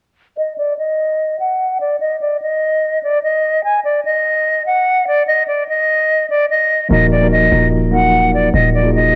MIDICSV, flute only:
0, 0, Header, 1, 2, 480
1, 0, Start_track
1, 0, Key_signature, -6, "minor"
1, 0, Tempo, 408163
1, 442, Time_signature, 4, 2, 24, 8
1, 10764, End_track
2, 0, Start_track
2, 0, Title_t, "Flute"
2, 0, Program_c, 0, 73
2, 442, Note_on_c, 0, 75, 85
2, 627, Note_off_c, 0, 75, 0
2, 681, Note_on_c, 0, 74, 72
2, 867, Note_off_c, 0, 74, 0
2, 922, Note_on_c, 0, 75, 89
2, 1599, Note_off_c, 0, 75, 0
2, 1642, Note_on_c, 0, 78, 75
2, 2093, Note_off_c, 0, 78, 0
2, 2121, Note_on_c, 0, 74, 77
2, 2306, Note_off_c, 0, 74, 0
2, 2354, Note_on_c, 0, 75, 88
2, 2542, Note_off_c, 0, 75, 0
2, 2601, Note_on_c, 0, 74, 67
2, 2787, Note_off_c, 0, 74, 0
2, 2841, Note_on_c, 0, 75, 83
2, 3518, Note_off_c, 0, 75, 0
2, 3564, Note_on_c, 0, 74, 80
2, 3748, Note_off_c, 0, 74, 0
2, 3800, Note_on_c, 0, 75, 90
2, 4252, Note_off_c, 0, 75, 0
2, 4280, Note_on_c, 0, 80, 83
2, 4466, Note_off_c, 0, 80, 0
2, 4521, Note_on_c, 0, 74, 77
2, 4706, Note_off_c, 0, 74, 0
2, 4762, Note_on_c, 0, 75, 86
2, 5439, Note_off_c, 0, 75, 0
2, 5482, Note_on_c, 0, 78, 76
2, 5933, Note_off_c, 0, 78, 0
2, 5963, Note_on_c, 0, 74, 86
2, 6148, Note_off_c, 0, 74, 0
2, 6200, Note_on_c, 0, 75, 90
2, 6386, Note_off_c, 0, 75, 0
2, 6440, Note_on_c, 0, 74, 76
2, 6626, Note_off_c, 0, 74, 0
2, 6683, Note_on_c, 0, 75, 85
2, 7359, Note_off_c, 0, 75, 0
2, 7407, Note_on_c, 0, 74, 85
2, 7590, Note_off_c, 0, 74, 0
2, 7645, Note_on_c, 0, 75, 79
2, 8095, Note_off_c, 0, 75, 0
2, 8124, Note_on_c, 0, 75, 94
2, 8308, Note_off_c, 0, 75, 0
2, 8364, Note_on_c, 0, 74, 76
2, 8548, Note_off_c, 0, 74, 0
2, 8605, Note_on_c, 0, 75, 94
2, 9020, Note_off_c, 0, 75, 0
2, 9323, Note_on_c, 0, 78, 79
2, 9774, Note_off_c, 0, 78, 0
2, 9802, Note_on_c, 0, 74, 86
2, 9987, Note_off_c, 0, 74, 0
2, 10037, Note_on_c, 0, 75, 96
2, 10224, Note_off_c, 0, 75, 0
2, 10284, Note_on_c, 0, 74, 72
2, 10468, Note_off_c, 0, 74, 0
2, 10524, Note_on_c, 0, 75, 88
2, 10764, Note_off_c, 0, 75, 0
2, 10764, End_track
0, 0, End_of_file